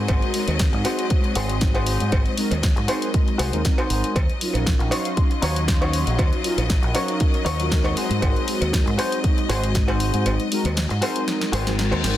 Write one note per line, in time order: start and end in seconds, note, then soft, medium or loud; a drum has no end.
0.00 4.14 F#3 medium
0.00 0.31 G#3 medium
0.00 0.31 C4 medium
0.00 0.32 D#4 medium
0.00 0.32 F#4 medium
0.00 0.45 F#4 medium
0.00 0.45 G#4 medium
0.00 0.32 A#4 medium
0.00 0.46 C5 medium
0.00 4.15 D#5 medium
0.08 0.20 G#1 medium
0.08 kick loud
0.08 closed hi-hat soft
0.08 cowbell medium
0.22 closed hi-hat soft
0.34 0.82 G#3 medium
0.34 0.82 C4 medium
0.34 0.82 D#4 medium
0.34 0.82 F#4 medium
0.34 0.82 A#4 medium
0.34 open hi-hat loud
0.48 0.68 D#2 medium
0.48 closed hi-hat soft
0.48 cowbell medium
0.59 muted clean electric guitar stroke soft
0.59 kick loud
0.59 snare loud
0.59 closed hi-hat soft
0.73 0.83 G#2 medium
0.73 muted clean electric guitar stroke medium
0.73 closed hi-hat soft
0.84 2.34 G#3 medium
0.84 2.34 C4 medium
0.84 2.35 D#4 medium
0.84 1.04 F#4 loud
0.84 2.35 F#4 medium
0.84 1.05 G#4 medium
0.84 2.35 C5 medium
0.84 1.05 C5 loud
0.84 open hi-hat loud
0.84 cowbell medium
0.99 closed hi-hat soft
1.10 kick loud
1.10 closed hi-hat soft
1.24 muted clean electric guitar stroke soft
1.24 closed hi-hat soft
1.35 1.97 G#1 medium
1.35 1.55 F#4 loud
1.35 1.56 G#4 loud
1.35 1.56 C5 loud
1.35 open hi-hat loud
1.35 cowbell medium
1.49 closed hi-hat soft
1.61 kick loud
1.61 snare loud
1.61 closed hi-hat soft
1.74 2.19 F#4 medium
1.74 2.19 G#4 medium
1.74 2.20 C5 medium
1.74 closed hi-hat soft
1.74 cowbell medium
1.86 open hi-hat loud
2.00 2.10 G#2 loud
2.00 closed hi-hat soft
2.12 2.23 G#1 loud
2.12 kick loud
2.12 closed hi-hat soft
2.12 cowbell medium
2.26 closed hi-hat soft
2.37 2.53 G#3 medium
2.37 2.53 C4 medium
2.37 2.53 D#4 medium
2.37 2.53 F#4 medium
2.37 2.53 A#4 medium
2.37 open hi-hat loud
2.51 2.72 D#2 medium
2.51 closed hi-hat soft
2.51 cowbell medium
2.62 muted clean electric guitar stroke soft
2.62 kick loud
2.62 snare loud
2.62 closed hi-hat soft
2.76 2.87 G#2 medium
2.76 muted clean electric guitar stroke medium
2.76 closed hi-hat soft
2.87 3.49 G#3 medium
2.87 3.49 C4 medium
2.87 3.50 D#4 medium
2.87 3.08 F#4 loud
2.87 3.50 F#4 medium
2.87 3.08 G#4 loud
2.87 3.50 A#4 medium
2.87 3.08 C5 loud
2.87 open hi-hat loud
2.87 cowbell loud
3.02 closed hi-hat soft
3.14 kick loud
3.14 closed hi-hat soft
3.27 muted clean electric guitar stroke soft
3.27 closed hi-hat soft
3.38 3.51 C2 medium
3.38 3.58 F#4 loud
3.38 3.59 G#4 loud
3.38 3.59 C5 loud
3.38 open hi-hat loud
3.38 cowbell medium
3.52 3.63 D#2 loud
3.52 3.63 G#3 medium
3.52 3.63 C4 medium
3.52 3.63 D#4 medium
3.52 3.63 F#4 medium
3.52 3.63 A#4 loud
3.52 closed hi-hat soft
3.65 4.14 G#3 medium
3.65 4.14 C4 medium
3.65 4.14 D#4 medium
3.65 4.14 F#4 medium
3.65 4.15 A#4 medium
3.65 kick loud
3.65 snare loud
3.65 closed hi-hat soft
3.78 4.15 F#4 medium
3.78 4.16 G#4 medium
3.78 4.16 C5 medium
3.78 closed hi-hat soft
3.78 cowbell medium
3.90 4.01 G#1 medium
3.90 open hi-hat loud
4.04 closed hi-hat soft
4.16 4.27 D#2 medium
4.16 12.17 F#3 medium
4.16 12.17 D#5 medium
4.16 kick loud
4.16 closed hi-hat soft
4.16 cowbell medium
4.29 closed hi-hat soft
4.41 4.89 F#3 medium
4.41 4.89 C#4 medium
4.41 4.89 D#4 medium
4.41 4.89 F4 medium
4.41 4.89 A#4 medium
4.41 open hi-hat loud
4.54 4.75 A#1 medium
4.54 closed hi-hat soft
4.54 cowbell medium
4.66 muted clean electric guitar stroke soft
4.66 kick loud
4.66 snare loud
4.66 closed hi-hat soft
4.79 4.90 A#1 medium
4.79 muted clean electric guitar stroke medium
4.79 closed hi-hat soft
4.91 6.41 F#3 medium
4.91 6.41 C#4 medium
4.91 5.11 D#4 loud
4.91 6.42 D#4 medium
4.91 5.11 F#4 medium
4.91 5.12 C#5 loud
4.91 6.42 F5 medium
4.91 6.42 C6 medium
4.91 open hi-hat loud
4.91 cowbell medium
5.05 closed hi-hat soft
5.17 kick loud
5.17 closed hi-hat soft
5.30 muted clean electric guitar stroke soft
5.30 closed hi-hat soft
5.42 6.03 D#2 loud
5.42 5.62 D#4 loud
5.42 5.62 F#4 loud
5.42 5.63 C#5 loud
5.42 open hi-hat loud
5.42 cowbell medium
5.56 closed hi-hat soft
5.68 kick loud
5.68 snare loud
5.68 closed hi-hat soft
5.81 6.25 D#4 medium
5.81 6.26 F#4 medium
5.81 6.26 C#5 medium
5.81 closed hi-hat soft
5.81 cowbell medium
5.93 open hi-hat loud
6.07 6.17 A#1 loud
6.07 closed hi-hat soft
6.19 kick loud
6.19 closed hi-hat soft
6.19 cowbell medium
6.33 closed hi-hat soft
6.44 6.60 F#3 medium
6.44 6.60 C#4 medium
6.44 6.60 D#4 medium
6.44 6.60 F4 medium
6.44 6.60 A#4 medium
6.44 open hi-hat loud
6.58 6.79 A#1 medium
6.58 closed hi-hat soft
6.58 cowbell medium
6.69 muted clean electric guitar stroke soft
6.69 kick loud
6.69 snare loud
6.69 closed hi-hat soft
6.83 6.93 A#1 medium
6.83 muted clean electric guitar stroke medium
6.83 closed hi-hat soft
6.94 7.56 F#3 medium
6.94 7.56 C#4 medium
6.94 7.14 D#4 loud
6.94 7.56 D#4 medium
6.94 7.15 F#4 loud
6.94 7.57 A#4 medium
6.94 7.15 C#5 loud
6.94 7.57 F5 medium
6.94 open hi-hat loud
6.94 cowbell medium
7.08 closed hi-hat soft
7.20 kick loud
7.20 closed hi-hat soft
7.33 muted clean electric guitar stroke soft
7.33 closed hi-hat soft
7.45 7.93 D#2 loud
7.45 7.65 D#4 loud
7.45 7.65 F#4 loud
7.45 7.66 C#5 loud
7.45 open hi-hat medium
7.45 cowbell medium
7.59 7.69 F#3 medium
7.59 7.70 C#4 medium
7.59 7.70 D#4 medium
7.59 7.70 F4 medium
7.59 7.70 A#4 loud
7.59 closed hi-hat soft
7.70 8.44 G#3 medium
7.70 8.45 C4 medium
7.70 8.45 D#4 medium
7.70 8.45 F#4 medium
7.70 8.45 A#4 medium
7.70 kick loud
7.70 snare loud
7.70 closed hi-hat medium
7.84 7.95 D#4 medium
7.84 7.94 F#4 medium
7.84 7.97 C#5 medium
7.84 closed hi-hat soft
7.84 cowbell medium
7.96 8.58 F#4 medium
7.96 8.59 G#4 medium
7.96 8.59 C5 medium
7.96 muted fingered electric bass stroke soft
7.96 open hi-hat loud
8.10 8.20 G#2 loud
8.10 closed hi-hat soft
8.22 8.34 G#1 medium
8.22 kick loud
8.22 closed hi-hat medium
8.22 cowbell medium
8.36 closed hi-hat soft
8.47 8.96 G#3 medium
8.47 8.96 C4 medium
8.47 8.96 D#4 medium
8.47 8.96 F#4 medium
8.47 8.96 A#4 medium
8.47 open hi-hat loud
8.61 8.82 D#2 medium
8.61 closed hi-hat soft
8.61 cowbell medium
8.72 muted clean electric guitar stroke soft
8.72 kick loud
8.72 snare loud
8.72 closed hi-hat soft
8.86 8.96 G#2 medium
8.86 muted clean electric guitar stroke medium
8.86 closed hi-hat soft
8.98 10.48 G#3 medium
8.98 10.48 C4 medium
8.98 10.48 D#4 medium
8.98 9.18 F#4 loud
8.98 10.49 F#4 medium
8.98 9.18 G#4 loud
8.98 9.19 C5 loud
8.98 10.49 C5 medium
8.98 open hi-hat medium
8.98 cowbell medium
9.12 closed hi-hat medium
9.24 kick loud
9.24 closed hi-hat soft
9.37 muted clean electric guitar stroke soft
9.37 closed hi-hat soft
9.49 10.10 G#1 loud
9.49 9.69 F#4 loud
9.49 9.69 G#4 loud
9.49 9.70 C5 loud
9.49 open hi-hat medium
9.49 cowbell medium
9.64 closed hi-hat medium
9.75 kick loud
9.75 snare loud
9.75 closed hi-hat soft
9.88 10.32 F#4 medium
9.88 10.33 G#4 medium
9.88 10.33 C5 medium
9.88 closed hi-hat soft
9.88 cowbell medium
10.00 open hi-hat medium
10.14 10.24 G#2 medium
10.14 closed hi-hat medium
10.26 10.37 G#1 medium
10.26 closed hi-hat medium
10.26 cowbell medium
10.40 closed hi-hat soft
10.51 10.67 G#3 medium
10.51 10.67 C4 medium
10.51 10.67 D#4 medium
10.51 10.67 F#4 medium
10.51 10.67 A#4 loud
10.51 open hi-hat loud
10.65 10.86 D#2 medium
10.65 closed hi-hat soft
10.65 cowbell medium
10.76 muted clean electric guitar stroke soft
10.76 snare loud
10.76 closed hi-hat medium
10.89 11.00 G#2 medium
10.89 muted clean electric guitar stroke medium
10.89 closed hi-hat soft
11.01 11.63 G#3 medium
11.01 11.63 C4 medium
11.01 11.63 D#4 medium
11.01 11.21 F#4 loud
11.01 11.63 F#4 medium
11.01 11.22 G#4 medium
11.01 11.64 A#4 medium
11.01 11.22 C5 loud
11.01 open hi-hat loud
11.01 cowbell medium
11.16 closed hi-hat medium
11.28 snare medium
11.28 closed hi-hat soft
11.28 reverse cymbal medium
11.41 muted clean electric guitar stroke soft
11.41 snare medium
11.41 closed hi-hat soft
11.52 11.92 G#1 loud
11.52 11.72 F#4 loud
11.52 11.73 G#4 loud
11.52 11.73 C5 loud
11.52 open hi-hat loud
11.52 cowbell medium
11.66 11.76 G#3 medium
11.66 11.76 C4 medium
11.66 11.77 D#4 medium
11.66 11.77 F#4 medium
11.66 11.77 A#4 loud
11.66 snare medium
11.66 closed hi-hat soft
11.78 12.17 G#3 medium
11.78 12.17 C4 medium
11.78 12.17 D#4 medium
11.78 12.17 F#4 medium
11.78 12.17 A#4 medium
11.78 snare medium
11.78 closed hi-hat medium
11.91 12.02 D#2 loud
11.91 12.17 F#4 medium
11.91 12.17 G#4 medium
11.91 12.17 C5 medium
11.91 closed hi-hat soft
11.91 cowbell medium
12.04 12.15 G#1 medium
12.04 snare loud
12.04 open hi-hat loud